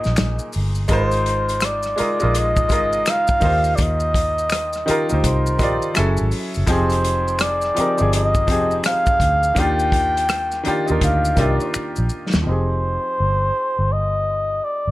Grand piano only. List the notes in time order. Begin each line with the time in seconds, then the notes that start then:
Already playing: A#2 A#3 D#4 G#4 C5
0.88 G#3 D#4 F4 A#4
0.93 C5
1.96 G#3 D#4 F4 A#4
2.01 D#5
2.19 G#3 D#4 F4 A#4
2.24 D#5
2.69 G#3 D#4 F4 A#4
2.74 D#5
3.40 D#3 D#4 F4
3.45 G4 C5
4.86 D#3 D#4 F4 G4
4.91 A#4
5.09 D#3 D#4 F4 G4
5.14 C5
5.58 D#3 D#4 F4
5.62 G4 D5
5.94 F#3 C#4 E4 G#4
5.98 A4
6.66 F3 C4 D#4 G4
6.71 G#4
7.75 F3 C4 D#4
7.79 G4 A#4
7.97 F3 C4 D#4 G4
8.02 G#4
8.47 F3 C4 D#4 G4
8.52 G#4
9.55 D#3 A#3 D4 F4
9.60 G4
10.63 D#3 A#3 D4 F4
10.68 G4
10.86 A#3 D4 D#4 F4
10.91 A#4
11.36 D#3 A#3 D4 F4
11.41 G4
12.42 F3 C4
12.47 D#4 G4
12.51 G#4